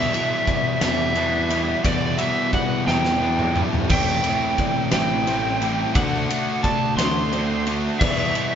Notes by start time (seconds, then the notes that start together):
Already playing: E2 B2 E3 G3 B3 E4 D5 E5
0.12 E2 B2 E3 G3 B3 E4 E5, ride
0.47 E3 D5, kick, ride
0.81 E2 B2 E3 G3 B3 E4 E5, snare, ride
1.15 E2 B2 E3 G3 B3 D4 E4 B4, ride
1.49 E2 B2 E3 G3 B3 E4, ride
1.83 E2 B2 E3 G3 B3 E4 D5, kick, ride
2.17 E2 B2 E3 G3 B3 E4 E5, ride
2.53 E3 D5 F#5, kick, ride
2.86 E2 B2 E3 G3 B3 E4 G5, snare
3.05 snare
3.20 E2 B2 E3 G3 B3 D4 E4 B4
3.39 mid tom
3.54 E2 B2 E3 G3 B3 E4, mid tom
3.73 floor tom
3.89 A1 A2 E3 A3 C4 E4 D5 G5, kick, crash, splash
4.23 A2 E3 A3 C4 E4 E5, ride
4.58 E3 D5, kick, ride
4.92 A1 A2 E3 G3 A3 C4 E4 G5, snare, ride
5.27 A2 E3 A3 C4 E4 C5, ride
5.61 A2 E3 G3 A3 C4 E4, ride
5.95 D2 D3 A3 D4 F#4 D5 F#5, kick, ride
6.30 D3 A3 D4 F#4 E5, ride
6.63 D3 D5 A5, kick, ride
6.97 D2 D3 A3 D4 F#4 C6, snare, ride
7.33 D3 A3 C4 D4 F#4 C5, ride
7.66 D3 A3 D4 F#4, ride
7.99 E2 B2 E3 G3 B3 E4 D5 E5, kick, crash
8.34 E2 B2 E3 G3 B3 E4 E5, ride